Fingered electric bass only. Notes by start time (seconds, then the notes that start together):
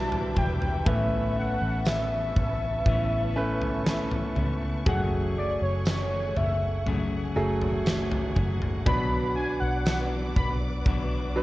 Already playing: B1
0.37 E1
0.87 A1
1.62 A1
2.37 A1
2.86 A1
4.36 C#2
4.87 F#1
5.62 F#1
6.37 F#1
7.36 F#1
8.36 F#1
8.87 B1
9.62 B1
10.37 B1
10.86 B1